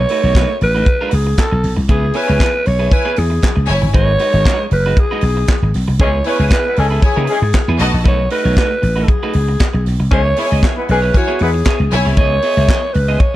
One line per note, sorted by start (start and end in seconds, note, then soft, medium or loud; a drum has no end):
0.00 0.57 C#5 loud
0.09 0.23 A3 medium
0.09 0.23 D#4 medium
0.09 0.23 F#4 medium
0.09 0.23 B4 medium
0.09 open hi-hat medium
0.24 0.44 B1 loud
0.24 0.35 A3 soft
0.24 0.35 D#4 medium
0.24 0.35 F#4 medium
0.24 0.35 C#5 medium
0.35 0.52 A3 medium
0.35 0.50 D#4 medium
0.35 0.49 F#4 medium
0.35 0.48 B4 medium
0.35 kick loud
0.35 snare loud
0.35 clap loud
0.35 closed hi-hat medium
0.50 muted clean electric guitar stroke medium
0.61 0.82 A1 medium
0.61 1.16 B4 loud
0.61 muted clean electric guitar stroke soft
0.61 open hi-hat medium
0.75 0.86 A3 soft
0.75 0.87 D#4 medium
0.75 0.86 F#4 medium
0.75 0.86 B4 medium
0.86 kick loud
0.86 closed hi-hat medium
1.01 1.12 A3 medium
1.01 1.12 D#4 medium
1.01 1.13 F#4 medium
1.01 1.13 B4 medium
1.11 1.33 C#2 medium
1.11 1.39 G#4 medium
1.11 muted clean electric guitar stroke soft
1.11 open hi-hat medium
1.26 muted clean electric guitar stroke soft
1.37 1.75 A4 loud
1.37 muted clean electric guitar stroke soft
1.37 kick loud
1.37 snare loud
1.37 clap loud
1.37 closed hi-hat medium
1.51 1.61 B1 loud
1.51 muted clean electric guitar stroke soft
1.64 1.75 B1 loud
1.64 open hi-hat medium
1.76 1.87 C2 loud
1.76 muted clean electric guitar stroke soft
1.89 2.10 C#2 loud
1.89 2.06 B3 loud
1.89 2.06 E4 loud
1.89 2.06 G#4 medium
1.89 2.18 G#4 loud
1.89 2.06 B4 medium
1.89 kick loud
1.89 closed hi-hat medium
2.14 2.28 B3 medium
2.14 2.26 E4 medium
2.14 2.27 E4 medium
2.14 2.27 G#4 medium
2.14 2.27 B4 medium
2.14 2.68 B4 loud
2.14 2.26 C#5 medium
2.14 2.26 G#5 loud
2.14 open hi-hat medium
2.28 2.39 C#2 loud
2.28 2.38 B3 medium
2.28 2.38 E4 medium
2.28 2.39 G#4 medium
2.28 2.40 C#5 medium
2.39 2.56 B3 medium
2.39 2.53 E4 medium
2.39 2.53 G#4 medium
2.39 2.52 B4 loud
2.39 kick loud
2.39 snare loud
2.39 clap loud
2.39 closed hi-hat medium
2.53 muted clean electric guitar stroke medium
2.65 2.87 B1 medium
2.65 2.95 C#5 loud
2.65 muted clean electric guitar stroke soft
2.65 open hi-hat medium
2.79 2.90 B3 medium
2.79 2.90 E4 soft
2.79 2.91 G#4 medium
2.79 2.91 B4 medium
2.91 3.03 E4 medium
2.91 3.20 B4 loud
2.91 3.03 C#5 medium
2.91 3.03 G#5 loud
2.91 muted clean electric guitar stroke soft
2.91 kick loud
2.91 closed hi-hat medium
3.05 3.15 B3 medium
3.05 3.16 E4 medium
3.05 3.16 G#4 medium
3.05 3.16 B4 medium
3.16 3.38 E2 loud
3.16 3.69 G#4 medium
3.16 muted clean electric guitar stroke soft
3.16 open hi-hat medium
3.30 muted clean electric guitar stroke soft
3.42 muted clean electric guitar stroke soft
3.42 kick loud
3.42 snare loud
3.42 clap loud
3.42 closed hi-hat medium
3.56 3.66 C#2 medium
3.56 muted clean electric guitar stroke medium
3.69 3.80 F#1 loud
3.69 3.91 E4 medium
3.69 3.91 C#5 medium
3.69 3.91 G#5 loud
3.69 snare soft
3.69 open hi-hat medium
3.82 3.92 G1 loud
3.82 muted clean electric guitar stroke medium
3.94 4.15 G#1 loud
3.94 4.11 G#3 medium
3.94 4.11 D#4 medium
3.94 4.11 F#4 loud
3.94 4.11 B4 medium
3.94 4.68 C#5 loud
3.94 kick loud
3.94 closed hi-hat medium
4.19 4.33 G#3 medium
4.19 4.33 D#4 medium
4.19 4.32 F#4 medium
4.19 4.33 B4 medium
4.19 open hi-hat medium
4.33 4.43 G#1 loud
4.33 4.43 G#3 medium
4.33 4.44 D#4 medium
4.33 4.44 F#4 medium
4.33 4.45 C#5 medium
4.45 4.66 G#3 medium
4.45 4.59 D#4 medium
4.45 4.59 F#4 medium
4.45 4.58 B4 loud
4.45 kick loud
4.45 snare loud
4.45 clap loud
4.45 closed hi-hat medium
4.60 muted clean electric guitar stroke soft
4.71 4.92 F#1 medium
4.71 5.01 B4 loud
4.71 muted clean electric guitar stroke soft
4.71 open hi-hat medium
4.86 4.97 G#3 medium
4.86 4.97 D#4 medium
4.86 4.98 F#4 medium
4.86 4.97 B4 medium
4.97 5.75 G#4 medium
4.97 muted clean electric guitar stroke soft
4.97 kick loud
4.97 closed hi-hat medium
5.11 5.22 G#3 medium
5.11 5.22 D#4 medium
5.11 5.22 F#4 medium
5.11 5.23 B4 medium
5.21 5.43 B1 medium
5.21 muted clean electric guitar stroke soft
5.21 open hi-hat medium
5.37 muted clean electric guitar stroke soft
5.47 muted clean electric guitar stroke soft
5.47 kick loud
5.47 snare loud
5.47 clap medium
5.47 closed hi-hat medium
5.62 5.72 G#1 medium
5.62 muted clean electric guitar stroke soft
5.74 5.86 B1 medium
5.74 snare soft
5.74 open hi-hat medium
5.88 5.98 C2 medium
5.88 muted clean electric guitar stroke medium
5.99 6.20 C#2 loud
5.99 6.08 E3 loud
5.99 6.08 G#3 loud
5.99 6.17 B3 medium
5.99 6.08 C#4 loud
5.99 6.17 E4 medium
5.99 6.08 G#4 loud
5.99 6.17 G#4 medium
5.99 6.17 B4 medium
5.99 6.28 C#5 loud
5.99 kick loud
5.99 closed hi-hat medium
6.24 6.34 G#3 medium
6.24 6.39 B3 medium
6.24 6.34 C#4 medium
6.24 6.37 E4 medium
6.24 6.34 E4 medium
6.24 6.40 E4 medium
6.24 6.39 G#4 medium
6.24 6.52 B4 loud
6.24 6.39 B4 medium
6.24 6.37 C#5 medium
6.24 6.34 C#5 medium
6.24 6.37 G#5 medium
6.24 open hi-hat medium
6.39 6.49 C#2 loud
6.39 6.50 B3 medium
6.39 6.51 E4 medium
6.39 6.51 G#4 medium
6.39 6.51 C#5 medium
6.50 6.68 B3 medium
6.50 6.65 E4 loud
6.50 6.65 G#4 medium
6.50 6.80 B4 loud
6.50 6.64 B4 loud
6.50 kick loud
6.50 snare loud
6.50 clap loud
6.50 closed hi-hat medium
6.66 6.75 G#3 medium
6.66 6.75 B3 medium
6.66 6.75 E4 medium
6.66 6.75 B4 medium
6.66 muted clean electric guitar stroke medium
6.76 6.98 C#2 medium
6.76 6.85 E3 loud
6.76 6.85 G#3 medium
6.76 6.85 C#4 medium
6.76 6.85 G#4 loud
6.76 7.04 A4 loud
6.76 muted clean electric guitar stroke soft
6.76 open hi-hat medium
6.90 7.01 B3 soft
6.90 7.02 E4 medium
6.90 7.02 G#4 medium
6.90 7.02 B4 medium
7.02 7.14 E4 medium
7.02 7.77 G#4 loud
7.02 7.14 C#5 medium
7.02 7.14 G#5 medium
7.02 muted clean electric guitar stroke soft
7.02 kick loud
7.02 closed hi-hat medium
7.16 7.27 C#3 loud
7.16 7.28 B3 medium
7.16 7.28 E4 medium
7.16 7.28 G#4 medium
7.16 7.28 B4 medium
7.27 7.37 E3 medium
7.27 7.37 G#3 medium
7.27 7.37 C#4 medium
7.27 7.37 G#4 loud
7.27 muted clean electric guitar stroke soft
7.27 open hi-hat medium
7.42 7.52 G#2 loud
7.42 muted clean electric guitar stroke soft
7.53 muted clean electric guitar stroke soft
7.53 kick loud
7.53 snare loud
7.53 clap loud
7.53 closed hi-hat medium
7.68 7.78 E2 loud
7.68 7.79 B3 medium
7.68 7.79 E4 medium
7.68 7.80 G#4 medium
7.68 7.80 B4 medium
7.79 7.91 B1 loud
7.79 7.93 A3 medium
7.79 7.93 D#4 medium
7.79 8.02 F#4 loud
7.79 7.93 F#4 medium
7.79 7.93 B4 medium
7.79 8.02 D#5 loud
7.79 8.02 A5 loud
7.79 open hi-hat medium
7.94 8.06 A#1 medium
7.94 muted clean electric guitar stroke soft
8.04 8.26 B1 loud
8.04 8.21 A3 medium
8.04 8.22 D#4 medium
8.04 8.22 F#4 medium
8.04 8.22 B4 loud
8.04 8.31 C#5 loud
8.04 kick loud
8.04 closed hi-hat medium
8.30 8.44 A3 medium
8.30 8.45 D#4 medium
8.30 8.44 F#4 medium
8.30 8.55 B4 loud
8.30 8.45 B4 medium
8.30 open hi-hat medium
8.45 8.55 B1 loud
8.45 8.55 A3 medium
8.45 8.56 D#4 medium
8.45 8.57 F#4 medium
8.45 8.57 C#5 medium
8.56 8.73 A3 medium
8.56 8.70 D#4 medium
8.56 8.70 F#4 medium
8.56 9.05 B4 loud
8.56 8.69 B4 medium
8.56 kick loud
8.56 snare loud
8.56 clap loud
8.56 closed hi-hat medium
8.70 muted clean electric guitar stroke soft
8.82 9.04 A1 medium
8.82 muted clean electric guitar stroke medium
8.82 open hi-hat medium
8.96 9.07 A3 medium
8.96 9.08 D#4 medium
8.96 9.08 F#4 medium
8.96 9.08 B4 medium
9.04 9.10 A4 medium
9.08 9.86 G#4 medium
9.08 muted clean electric guitar stroke medium
9.08 kick loud
9.08 closed hi-hat medium
9.23 9.33 A3 medium
9.23 9.34 D#4 medium
9.23 9.34 F#4 medium
9.23 9.34 B4 medium
9.33 9.55 C#2 medium
9.33 open hi-hat medium
9.48 muted clean electric guitar stroke soft
9.59 muted clean electric guitar stroke soft
9.59 kick loud
9.59 snare loud
9.59 clap loud
9.59 closed hi-hat medium
9.73 9.84 B1 medium
9.73 muted clean electric guitar stroke medium
9.86 9.97 B1 loud
9.86 snare soft
9.86 open hi-hat medium
10.00 10.10 C2 loud
10.00 muted clean electric guitar stroke soft
10.11 10.32 C#2 loud
10.11 10.20 E3 loud
10.11 10.20 G#3 loud
10.11 10.28 B3 medium
10.11 10.20 C#4 loud
10.11 10.28 E4 medium
10.11 10.20 G#4 loud
10.11 10.28 G#4 medium
10.11 10.29 C#5 loud
10.11 10.60 C#5 loud
10.11 kick loud
10.11 closed hi-hat medium
10.37 10.45 G#3 medium
10.37 10.50 B3 medium
10.37 10.45 C#4 medium
10.37 10.49 E4 medium
10.37 10.46 E4 medium
10.37 10.50 E4 medium
10.37 10.50 G#4 medium
10.37 10.45 C#5 loud
10.37 10.49 C#5 medium
10.37 10.50 C#5 medium
10.37 10.49 G#5 medium
10.37 open hi-hat medium
10.51 10.61 C#2 loud
10.51 10.61 B3 medium
10.51 10.62 E4 medium
10.51 10.62 G#4 medium
10.51 10.63 D#5 medium
10.62 10.79 B3 medium
10.62 10.76 E4 medium
10.62 10.76 G#4 medium
10.62 10.75 C#5 loud
10.62 kick loud
10.62 snare loud
10.62 clap loud
10.62 closed hi-hat medium
10.77 10.86 G#3 medium
10.77 10.86 B3 medium
10.77 10.86 E4 medium
10.77 10.86 B4 medium
10.77 muted clean electric guitar stroke medium
10.89 11.10 B1 medium
10.89 10.97 E3 loud
10.89 10.97 G#3 loud
10.89 10.97 C#4 medium
10.89 10.97 G#4 loud
10.89 11.19 B4 loud
10.89 muted clean electric guitar stroke soft
10.89 open hi-hat medium
11.02 11.13 B3 soft
11.02 11.13 E4 medium
11.02 11.14 G#4 medium
11.02 11.14 C#5 medium
11.14 11.26 E4 medium
11.14 11.44 F#4 loud
11.14 11.26 C#5 loud
11.14 11.26 G#5 medium
11.14 muted clean electric guitar stroke medium
11.14 kick loud
11.14 closed hi-hat medium
11.28 11.39 B3 medium
11.28 11.39 E4 medium
11.28 11.40 G#4 loud
11.28 11.40 C#5 medium
11.39 11.61 E2 medium
11.39 11.49 G#3 medium
11.39 11.49 B3 medium
11.39 11.49 E4 medium
11.39 11.93 G#4 medium
11.39 11.49 B4 loud
11.39 muted clean electric guitar stroke soft
11.39 open hi-hat medium
11.54 muted clean electric guitar stroke medium
11.65 11.83 B3 medium
11.65 11.80 E4 medium
11.65 11.79 G#4 medium
11.65 11.79 C#5 loud
11.65 kick loud
11.65 snare loud
11.65 clap loud
11.65 closed hi-hat medium
11.80 11.89 C#2 loud
11.80 muted clean electric guitar stroke soft
11.91 12.03 B1 loud
11.91 12.14 E4 loud
11.91 12.14 C#5 medium
11.91 12.14 G#5 loud
11.91 muted clean electric guitar stroke medium
11.91 snare soft
11.91 open hi-hat medium
12.05 12.15 C2 medium
12.05 12.16 B3 medium
12.05 12.17 E4 medium
12.05 12.17 G#4 medium
12.05 12.17 C#5 medium
12.17 12.38 C#2 loud
12.17 12.34 B3 medium
12.17 12.34 E4 medium
12.17 12.34 G#4 medium
12.17 12.95 C#5 loud
12.17 12.34 D#5 medium
12.17 kick loud
12.17 closed hi-hat medium
12.42 12.56 B3 medium
12.42 12.56 E4 medium
12.42 12.56 G#4 medium
12.42 12.57 D#5 medium
12.42 open hi-hat medium
12.57 12.67 C#2 loud
12.57 12.67 B3 medium
12.57 12.68 E4 medium
12.57 12.68 G#4 medium
12.57 12.69 E5 medium
12.68 12.85 B3 medium
12.68 12.82 E4 medium
12.68 12.82 G#4 medium
12.68 12.81 D#5 medium
12.68 kick loud
12.68 snare loud
12.68 clap loud
12.68 closed hi-hat medium
12.83 muted clean electric guitar stroke soft
12.94 13.16 C#2 loud
12.94 13.21 B4 loud
12.94 muted clean electric guitar stroke soft
12.94 open hi-hat medium
13.08 13.19 B3 soft
13.08 13.20 E4 soft
13.08 13.20 G#4 medium
13.08 13.20 D#5 medium
13.20 13.36 C#5 medium
13.20 muted clean electric guitar stroke soft
13.20 kick loud
13.20 closed hi-hat medium